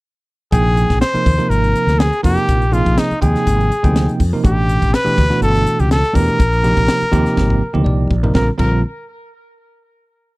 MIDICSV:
0, 0, Header, 1, 6, 480
1, 0, Start_track
1, 0, Tempo, 489396
1, 515, Time_signature, 4, 2, 24, 8
1, 10173, End_track
2, 0, Start_track
2, 0, Title_t, "Trumpet"
2, 0, Program_c, 0, 56
2, 516, Note_on_c, 0, 68, 90
2, 963, Note_off_c, 0, 68, 0
2, 994, Note_on_c, 0, 72, 86
2, 1467, Note_on_c, 0, 70, 85
2, 1482, Note_off_c, 0, 72, 0
2, 1952, Note_on_c, 0, 68, 86
2, 1966, Note_off_c, 0, 70, 0
2, 2191, Note_off_c, 0, 68, 0
2, 2197, Note_on_c, 0, 67, 86
2, 2679, Note_on_c, 0, 65, 79
2, 2694, Note_off_c, 0, 67, 0
2, 2926, Note_on_c, 0, 63, 77
2, 2941, Note_off_c, 0, 65, 0
2, 3151, Note_off_c, 0, 63, 0
2, 3157, Note_on_c, 0, 68, 73
2, 4076, Note_off_c, 0, 68, 0
2, 4371, Note_on_c, 0, 67, 90
2, 4848, Note_on_c, 0, 71, 104
2, 4863, Note_off_c, 0, 67, 0
2, 5315, Note_off_c, 0, 71, 0
2, 5321, Note_on_c, 0, 69, 95
2, 5688, Note_on_c, 0, 67, 73
2, 5703, Note_off_c, 0, 69, 0
2, 5797, Note_off_c, 0, 67, 0
2, 5801, Note_on_c, 0, 69, 91
2, 6032, Note_on_c, 0, 70, 96
2, 6047, Note_off_c, 0, 69, 0
2, 7709, Note_off_c, 0, 70, 0
2, 8192, Note_on_c, 0, 70, 75
2, 8330, Note_off_c, 0, 70, 0
2, 8422, Note_on_c, 0, 70, 76
2, 8648, Note_off_c, 0, 70, 0
2, 10173, End_track
3, 0, Start_track
3, 0, Title_t, "Tine electric piano"
3, 0, Program_c, 1, 4
3, 514, Note_on_c, 1, 48, 60
3, 514, Note_on_c, 1, 58, 63
3, 517, Note_on_c, 1, 63, 57
3, 518, Note_on_c, 1, 79, 74
3, 519, Note_on_c, 1, 53, 62
3, 994, Note_off_c, 1, 48, 0
3, 994, Note_off_c, 1, 58, 0
3, 996, Note_off_c, 1, 53, 0
3, 996, Note_off_c, 1, 63, 0
3, 996, Note_off_c, 1, 79, 0
3, 1112, Note_on_c, 1, 48, 68
3, 1114, Note_on_c, 1, 58, 61
3, 1119, Note_on_c, 1, 53, 65
3, 1120, Note_on_c, 1, 63, 65
3, 1120, Note_on_c, 1, 70, 79
3, 1306, Note_off_c, 1, 48, 0
3, 1307, Note_off_c, 1, 58, 0
3, 1310, Note_off_c, 1, 53, 0
3, 1310, Note_off_c, 1, 63, 0
3, 1311, Note_off_c, 1, 70, 0
3, 1351, Note_on_c, 1, 48, 63
3, 1354, Note_on_c, 1, 53, 65
3, 1355, Note_on_c, 1, 63, 57
3, 1357, Note_on_c, 1, 58, 61
3, 1357, Note_on_c, 1, 70, 70
3, 2025, Note_off_c, 1, 48, 0
3, 2026, Note_off_c, 1, 53, 0
3, 2027, Note_off_c, 1, 63, 0
3, 2028, Note_off_c, 1, 58, 0
3, 2028, Note_off_c, 1, 70, 0
3, 2189, Note_on_c, 1, 48, 66
3, 2189, Note_on_c, 1, 53, 62
3, 2190, Note_on_c, 1, 58, 62
3, 2190, Note_on_c, 1, 70, 80
3, 2192, Note_on_c, 1, 63, 63
3, 2582, Note_off_c, 1, 48, 0
3, 2582, Note_off_c, 1, 53, 0
3, 2582, Note_off_c, 1, 58, 0
3, 2582, Note_off_c, 1, 70, 0
3, 2583, Note_off_c, 1, 63, 0
3, 2665, Note_on_c, 1, 48, 68
3, 2666, Note_on_c, 1, 53, 64
3, 2667, Note_on_c, 1, 63, 63
3, 2669, Note_on_c, 1, 68, 82
3, 2671, Note_on_c, 1, 58, 66
3, 3060, Note_off_c, 1, 48, 0
3, 3060, Note_off_c, 1, 53, 0
3, 3060, Note_off_c, 1, 63, 0
3, 3061, Note_off_c, 1, 68, 0
3, 3062, Note_off_c, 1, 58, 0
3, 3149, Note_on_c, 1, 53, 67
3, 3151, Note_on_c, 1, 48, 79
3, 3155, Note_on_c, 1, 79, 81
3, 3157, Note_on_c, 1, 63, 71
3, 3158, Note_on_c, 1, 58, 69
3, 3631, Note_off_c, 1, 53, 0
3, 3632, Note_off_c, 1, 48, 0
3, 3634, Note_off_c, 1, 79, 0
3, 3635, Note_off_c, 1, 58, 0
3, 3635, Note_off_c, 1, 63, 0
3, 3757, Note_on_c, 1, 48, 84
3, 3760, Note_on_c, 1, 63, 75
3, 3761, Note_on_c, 1, 53, 66
3, 3762, Note_on_c, 1, 58, 73
3, 3769, Note_on_c, 1, 79, 86
3, 4137, Note_off_c, 1, 48, 0
3, 4138, Note_off_c, 1, 53, 0
3, 4138, Note_off_c, 1, 63, 0
3, 4139, Note_off_c, 1, 58, 0
3, 4142, Note_off_c, 1, 79, 0
3, 4245, Note_on_c, 1, 58, 60
3, 4248, Note_on_c, 1, 70, 81
3, 4250, Note_on_c, 1, 53, 69
3, 4252, Note_on_c, 1, 48, 72
3, 4253, Note_on_c, 1, 63, 65
3, 4334, Note_off_c, 1, 58, 0
3, 4335, Note_off_c, 1, 70, 0
3, 4336, Note_off_c, 1, 53, 0
3, 4337, Note_off_c, 1, 48, 0
3, 4337, Note_off_c, 1, 63, 0
3, 4348, Note_on_c, 1, 52, 62
3, 4352, Note_on_c, 1, 57, 69
3, 4352, Note_on_c, 1, 67, 76
3, 4353, Note_on_c, 1, 47, 69
3, 4354, Note_on_c, 1, 62, 62
3, 4829, Note_off_c, 1, 52, 0
3, 4831, Note_off_c, 1, 57, 0
3, 4831, Note_off_c, 1, 67, 0
3, 4832, Note_off_c, 1, 47, 0
3, 4832, Note_off_c, 1, 62, 0
3, 4951, Note_on_c, 1, 47, 69
3, 4951, Note_on_c, 1, 52, 74
3, 4952, Note_on_c, 1, 62, 68
3, 4953, Note_on_c, 1, 67, 80
3, 4956, Note_on_c, 1, 57, 70
3, 5144, Note_off_c, 1, 47, 0
3, 5144, Note_off_c, 1, 52, 0
3, 5145, Note_off_c, 1, 62, 0
3, 5145, Note_off_c, 1, 67, 0
3, 5147, Note_off_c, 1, 57, 0
3, 5191, Note_on_c, 1, 47, 66
3, 5193, Note_on_c, 1, 52, 65
3, 5198, Note_on_c, 1, 62, 63
3, 5199, Note_on_c, 1, 57, 65
3, 5202, Note_on_c, 1, 66, 82
3, 5861, Note_off_c, 1, 47, 0
3, 5862, Note_off_c, 1, 52, 0
3, 5865, Note_off_c, 1, 57, 0
3, 5865, Note_off_c, 1, 62, 0
3, 5867, Note_off_c, 1, 66, 0
3, 6016, Note_on_c, 1, 47, 75
3, 6017, Note_on_c, 1, 52, 73
3, 6017, Note_on_c, 1, 57, 70
3, 6017, Note_on_c, 1, 62, 68
3, 6022, Note_on_c, 1, 67, 78
3, 6263, Note_off_c, 1, 47, 0
3, 6264, Note_off_c, 1, 52, 0
3, 6264, Note_off_c, 1, 57, 0
3, 6264, Note_off_c, 1, 62, 0
3, 6266, Note_off_c, 1, 67, 0
3, 6506, Note_on_c, 1, 48, 74
3, 6508, Note_on_c, 1, 58, 63
3, 6509, Note_on_c, 1, 63, 67
3, 6510, Note_on_c, 1, 67, 74
3, 6511, Note_on_c, 1, 53, 68
3, 6897, Note_off_c, 1, 48, 0
3, 6897, Note_off_c, 1, 58, 0
3, 6898, Note_off_c, 1, 63, 0
3, 6898, Note_off_c, 1, 67, 0
3, 6899, Note_off_c, 1, 53, 0
3, 6982, Note_on_c, 1, 48, 93
3, 6982, Note_on_c, 1, 53, 77
3, 6982, Note_on_c, 1, 63, 83
3, 6983, Note_on_c, 1, 58, 82
3, 6990, Note_on_c, 1, 67, 101
3, 7464, Note_off_c, 1, 48, 0
3, 7464, Note_off_c, 1, 53, 0
3, 7464, Note_off_c, 1, 58, 0
3, 7464, Note_off_c, 1, 63, 0
3, 7468, Note_off_c, 1, 67, 0
3, 7585, Note_on_c, 1, 58, 63
3, 7588, Note_on_c, 1, 48, 71
3, 7591, Note_on_c, 1, 53, 69
3, 7591, Note_on_c, 1, 63, 74
3, 7591, Note_on_c, 1, 67, 90
3, 7693, Note_on_c, 1, 74, 59
3, 7967, Note_off_c, 1, 58, 0
3, 7969, Note_off_c, 1, 48, 0
3, 7970, Note_off_c, 1, 53, 0
3, 7970, Note_off_c, 1, 63, 0
3, 7970, Note_off_c, 1, 67, 0
3, 8074, Note_on_c, 1, 53, 69
3, 8076, Note_on_c, 1, 58, 74
3, 8076, Note_on_c, 1, 70, 84
3, 8077, Note_on_c, 1, 48, 74
3, 8079, Note_on_c, 1, 63, 73
3, 8147, Note_off_c, 1, 74, 0
3, 8165, Note_off_c, 1, 53, 0
3, 8166, Note_off_c, 1, 48, 0
3, 8166, Note_off_c, 1, 58, 0
3, 8166, Note_off_c, 1, 70, 0
3, 8167, Note_off_c, 1, 63, 0
3, 8183, Note_on_c, 1, 60, 69
3, 8185, Note_on_c, 1, 55, 65
3, 8187, Note_on_c, 1, 65, 65
3, 8188, Note_on_c, 1, 70, 79
3, 8189, Note_on_c, 1, 50, 77
3, 8325, Note_off_c, 1, 60, 0
3, 8326, Note_off_c, 1, 55, 0
3, 8327, Note_off_c, 1, 65, 0
3, 8328, Note_off_c, 1, 50, 0
3, 8328, Note_off_c, 1, 70, 0
3, 8413, Note_on_c, 1, 60, 70
3, 8415, Note_on_c, 1, 50, 69
3, 8416, Note_on_c, 1, 55, 66
3, 8416, Note_on_c, 1, 70, 74
3, 8418, Note_on_c, 1, 65, 65
3, 8644, Note_off_c, 1, 60, 0
3, 8645, Note_off_c, 1, 50, 0
3, 8645, Note_off_c, 1, 55, 0
3, 8645, Note_off_c, 1, 70, 0
3, 8646, Note_off_c, 1, 65, 0
3, 10173, End_track
4, 0, Start_track
4, 0, Title_t, "Fretless electric bass"
4, 0, Program_c, 2, 35
4, 517, Note_on_c, 2, 34, 82
4, 857, Note_off_c, 2, 34, 0
4, 885, Note_on_c, 2, 34, 66
4, 989, Note_off_c, 2, 34, 0
4, 1240, Note_on_c, 2, 39, 70
4, 1356, Note_off_c, 2, 39, 0
4, 1469, Note_on_c, 2, 32, 84
4, 1695, Note_off_c, 2, 32, 0
4, 1833, Note_on_c, 2, 38, 76
4, 2061, Note_off_c, 2, 38, 0
4, 2201, Note_on_c, 2, 41, 77
4, 2317, Note_off_c, 2, 41, 0
4, 2444, Note_on_c, 2, 34, 80
4, 2781, Note_off_c, 2, 34, 0
4, 2812, Note_on_c, 2, 34, 70
4, 2913, Note_off_c, 2, 34, 0
4, 3164, Note_on_c, 2, 39, 69
4, 3279, Note_off_c, 2, 39, 0
4, 3402, Note_on_c, 2, 32, 97
4, 3622, Note_off_c, 2, 32, 0
4, 3766, Note_on_c, 2, 38, 82
4, 3987, Note_off_c, 2, 38, 0
4, 4121, Note_on_c, 2, 41, 83
4, 4236, Note_off_c, 2, 41, 0
4, 4357, Note_on_c, 2, 33, 92
4, 4696, Note_off_c, 2, 33, 0
4, 4730, Note_on_c, 2, 33, 74
4, 4830, Note_off_c, 2, 33, 0
4, 5082, Note_on_c, 2, 38, 80
4, 5196, Note_off_c, 2, 38, 0
4, 5313, Note_on_c, 2, 31, 95
4, 5535, Note_off_c, 2, 31, 0
4, 5689, Note_on_c, 2, 37, 81
4, 5907, Note_off_c, 2, 37, 0
4, 6038, Note_on_c, 2, 40, 86
4, 6153, Note_off_c, 2, 40, 0
4, 6272, Note_on_c, 2, 34, 90
4, 6611, Note_off_c, 2, 34, 0
4, 6642, Note_on_c, 2, 34, 68
4, 6744, Note_off_c, 2, 34, 0
4, 6989, Note_on_c, 2, 39, 74
4, 7107, Note_off_c, 2, 39, 0
4, 7234, Note_on_c, 2, 32, 83
4, 7454, Note_off_c, 2, 32, 0
4, 7599, Note_on_c, 2, 38, 79
4, 7697, Note_off_c, 2, 38, 0
4, 7703, Note_on_c, 2, 36, 74
4, 7921, Note_off_c, 2, 36, 0
4, 7952, Note_on_c, 2, 34, 64
4, 8166, Note_off_c, 2, 34, 0
4, 8191, Note_on_c, 2, 34, 78
4, 8330, Note_off_c, 2, 34, 0
4, 8432, Note_on_c, 2, 34, 91
4, 8654, Note_off_c, 2, 34, 0
4, 10173, End_track
5, 0, Start_track
5, 0, Title_t, "Muted fretless electric bass strokes"
5, 1124, Note_on_c, 9, 29, 34
5, 1222, Note_off_c, 9, 29, 0
5, 2322, Note_on_c, 9, 29, 32
5, 2420, Note_off_c, 9, 29, 0
5, 3054, Note_on_c, 9, 29, 35
5, 3152, Note_off_c, 9, 29, 0
5, 4251, Note_on_c, 9, 29, 36
5, 4349, Note_off_c, 9, 29, 0
5, 4969, Note_on_c, 9, 29, 36
5, 5067, Note_off_c, 9, 29, 0
5, 6167, Note_on_c, 9, 29, 35
5, 6265, Note_off_c, 9, 29, 0
5, 6884, Note_on_c, 9, 29, 35
5, 6983, Note_off_c, 9, 29, 0
5, 10173, End_track
6, 0, Start_track
6, 0, Title_t, "Drums"
6, 514, Note_on_c, 9, 42, 75
6, 515, Note_on_c, 9, 36, 92
6, 612, Note_off_c, 9, 42, 0
6, 613, Note_off_c, 9, 36, 0
6, 758, Note_on_c, 9, 42, 51
6, 856, Note_off_c, 9, 42, 0
6, 884, Note_on_c, 9, 36, 60
6, 885, Note_on_c, 9, 42, 33
6, 886, Note_on_c, 9, 38, 29
6, 982, Note_off_c, 9, 36, 0
6, 983, Note_off_c, 9, 42, 0
6, 984, Note_off_c, 9, 38, 0
6, 996, Note_on_c, 9, 42, 70
6, 997, Note_on_c, 9, 38, 89
6, 1094, Note_off_c, 9, 42, 0
6, 1095, Note_off_c, 9, 38, 0
6, 1128, Note_on_c, 9, 42, 35
6, 1226, Note_off_c, 9, 42, 0
6, 1238, Note_on_c, 9, 36, 78
6, 1239, Note_on_c, 9, 46, 59
6, 1336, Note_off_c, 9, 36, 0
6, 1337, Note_off_c, 9, 46, 0
6, 1369, Note_on_c, 9, 42, 35
6, 1467, Note_off_c, 9, 42, 0
6, 1483, Note_on_c, 9, 42, 77
6, 1581, Note_off_c, 9, 42, 0
6, 1608, Note_on_c, 9, 42, 40
6, 1706, Note_off_c, 9, 42, 0
6, 1722, Note_on_c, 9, 42, 52
6, 1820, Note_off_c, 9, 42, 0
6, 1848, Note_on_c, 9, 42, 39
6, 1849, Note_on_c, 9, 38, 31
6, 1946, Note_off_c, 9, 42, 0
6, 1947, Note_off_c, 9, 38, 0
6, 1961, Note_on_c, 9, 42, 72
6, 1962, Note_on_c, 9, 38, 107
6, 2059, Note_off_c, 9, 42, 0
6, 2060, Note_off_c, 9, 38, 0
6, 2086, Note_on_c, 9, 42, 35
6, 2184, Note_off_c, 9, 42, 0
6, 2199, Note_on_c, 9, 46, 69
6, 2200, Note_on_c, 9, 36, 68
6, 2200, Note_on_c, 9, 38, 28
6, 2297, Note_off_c, 9, 46, 0
6, 2298, Note_off_c, 9, 36, 0
6, 2298, Note_off_c, 9, 38, 0
6, 2330, Note_on_c, 9, 42, 37
6, 2428, Note_off_c, 9, 42, 0
6, 2439, Note_on_c, 9, 42, 75
6, 2440, Note_on_c, 9, 36, 90
6, 2537, Note_off_c, 9, 42, 0
6, 2538, Note_off_c, 9, 36, 0
6, 2567, Note_on_c, 9, 42, 31
6, 2665, Note_off_c, 9, 42, 0
6, 2682, Note_on_c, 9, 42, 52
6, 2780, Note_off_c, 9, 42, 0
6, 2808, Note_on_c, 9, 36, 68
6, 2808, Note_on_c, 9, 42, 29
6, 2906, Note_off_c, 9, 36, 0
6, 2906, Note_off_c, 9, 42, 0
6, 2918, Note_on_c, 9, 42, 72
6, 2919, Note_on_c, 9, 38, 98
6, 3016, Note_off_c, 9, 42, 0
6, 3017, Note_off_c, 9, 38, 0
6, 3049, Note_on_c, 9, 42, 33
6, 3147, Note_off_c, 9, 42, 0
6, 3160, Note_on_c, 9, 36, 81
6, 3162, Note_on_c, 9, 42, 48
6, 3258, Note_off_c, 9, 36, 0
6, 3261, Note_off_c, 9, 42, 0
6, 3292, Note_on_c, 9, 42, 35
6, 3293, Note_on_c, 9, 38, 30
6, 3390, Note_off_c, 9, 42, 0
6, 3391, Note_off_c, 9, 38, 0
6, 3402, Note_on_c, 9, 36, 64
6, 3402, Note_on_c, 9, 42, 72
6, 3500, Note_off_c, 9, 36, 0
6, 3500, Note_off_c, 9, 42, 0
6, 3535, Note_on_c, 9, 42, 34
6, 3633, Note_off_c, 9, 42, 0
6, 3646, Note_on_c, 9, 42, 56
6, 3744, Note_off_c, 9, 42, 0
6, 3767, Note_on_c, 9, 36, 69
6, 3767, Note_on_c, 9, 42, 35
6, 3865, Note_off_c, 9, 36, 0
6, 3865, Note_off_c, 9, 42, 0
6, 3881, Note_on_c, 9, 42, 77
6, 3882, Note_on_c, 9, 38, 92
6, 3979, Note_off_c, 9, 42, 0
6, 3980, Note_off_c, 9, 38, 0
6, 4010, Note_on_c, 9, 42, 34
6, 4108, Note_off_c, 9, 42, 0
6, 4119, Note_on_c, 9, 36, 65
6, 4119, Note_on_c, 9, 46, 65
6, 4217, Note_off_c, 9, 46, 0
6, 4218, Note_off_c, 9, 36, 0
6, 4360, Note_on_c, 9, 36, 100
6, 4360, Note_on_c, 9, 42, 71
6, 4458, Note_off_c, 9, 36, 0
6, 4458, Note_off_c, 9, 42, 0
6, 4602, Note_on_c, 9, 42, 54
6, 4700, Note_off_c, 9, 42, 0
6, 4728, Note_on_c, 9, 36, 66
6, 4730, Note_on_c, 9, 42, 35
6, 4827, Note_off_c, 9, 36, 0
6, 4828, Note_off_c, 9, 42, 0
6, 4843, Note_on_c, 9, 42, 73
6, 4844, Note_on_c, 9, 38, 95
6, 4941, Note_off_c, 9, 42, 0
6, 4942, Note_off_c, 9, 38, 0
6, 4972, Note_on_c, 9, 42, 36
6, 5071, Note_off_c, 9, 42, 0
6, 5079, Note_on_c, 9, 36, 70
6, 5081, Note_on_c, 9, 46, 57
6, 5177, Note_off_c, 9, 36, 0
6, 5179, Note_off_c, 9, 46, 0
6, 5207, Note_on_c, 9, 42, 34
6, 5208, Note_on_c, 9, 38, 31
6, 5305, Note_off_c, 9, 42, 0
6, 5306, Note_off_c, 9, 38, 0
6, 5318, Note_on_c, 9, 42, 77
6, 5416, Note_off_c, 9, 42, 0
6, 5447, Note_on_c, 9, 42, 40
6, 5545, Note_off_c, 9, 42, 0
6, 5558, Note_on_c, 9, 42, 60
6, 5656, Note_off_c, 9, 42, 0
6, 5683, Note_on_c, 9, 42, 39
6, 5781, Note_off_c, 9, 42, 0
6, 5797, Note_on_c, 9, 42, 76
6, 5798, Note_on_c, 9, 38, 97
6, 5895, Note_off_c, 9, 42, 0
6, 5896, Note_off_c, 9, 38, 0
6, 5922, Note_on_c, 9, 42, 36
6, 5923, Note_on_c, 9, 38, 31
6, 6020, Note_off_c, 9, 42, 0
6, 6021, Note_off_c, 9, 38, 0
6, 6035, Note_on_c, 9, 36, 72
6, 6037, Note_on_c, 9, 46, 68
6, 6133, Note_off_c, 9, 36, 0
6, 6135, Note_off_c, 9, 46, 0
6, 6162, Note_on_c, 9, 42, 41
6, 6260, Note_off_c, 9, 42, 0
6, 6273, Note_on_c, 9, 42, 78
6, 6275, Note_on_c, 9, 36, 102
6, 6371, Note_off_c, 9, 42, 0
6, 6373, Note_off_c, 9, 36, 0
6, 6405, Note_on_c, 9, 42, 33
6, 6503, Note_off_c, 9, 42, 0
6, 6514, Note_on_c, 9, 42, 54
6, 6515, Note_on_c, 9, 38, 29
6, 6612, Note_off_c, 9, 42, 0
6, 6613, Note_off_c, 9, 38, 0
6, 6640, Note_on_c, 9, 42, 31
6, 6641, Note_on_c, 9, 36, 67
6, 6738, Note_off_c, 9, 42, 0
6, 6739, Note_off_c, 9, 36, 0
6, 6751, Note_on_c, 9, 42, 72
6, 6752, Note_on_c, 9, 38, 90
6, 6849, Note_off_c, 9, 42, 0
6, 6850, Note_off_c, 9, 38, 0
6, 6877, Note_on_c, 9, 42, 36
6, 6975, Note_off_c, 9, 42, 0
6, 6992, Note_on_c, 9, 36, 70
6, 6992, Note_on_c, 9, 42, 55
6, 7090, Note_off_c, 9, 36, 0
6, 7090, Note_off_c, 9, 42, 0
6, 7120, Note_on_c, 9, 42, 34
6, 7121, Note_on_c, 9, 38, 28
6, 7218, Note_off_c, 9, 42, 0
6, 7219, Note_off_c, 9, 38, 0
6, 7232, Note_on_c, 9, 36, 69
6, 7233, Note_on_c, 9, 38, 55
6, 7330, Note_off_c, 9, 36, 0
6, 7331, Note_off_c, 9, 38, 0
6, 7358, Note_on_c, 9, 36, 52
6, 7457, Note_off_c, 9, 36, 0
6, 7599, Note_on_c, 9, 47, 62
6, 7697, Note_off_c, 9, 47, 0
6, 7710, Note_on_c, 9, 45, 81
6, 7808, Note_off_c, 9, 45, 0
6, 7950, Note_on_c, 9, 36, 71
6, 8048, Note_off_c, 9, 36, 0
6, 8079, Note_on_c, 9, 43, 77
6, 8177, Note_off_c, 9, 43, 0
6, 8188, Note_on_c, 9, 38, 81
6, 8190, Note_on_c, 9, 36, 91
6, 8286, Note_off_c, 9, 38, 0
6, 8288, Note_off_c, 9, 36, 0
6, 8424, Note_on_c, 9, 49, 73
6, 8429, Note_on_c, 9, 36, 82
6, 8522, Note_off_c, 9, 49, 0
6, 8527, Note_off_c, 9, 36, 0
6, 10173, End_track
0, 0, End_of_file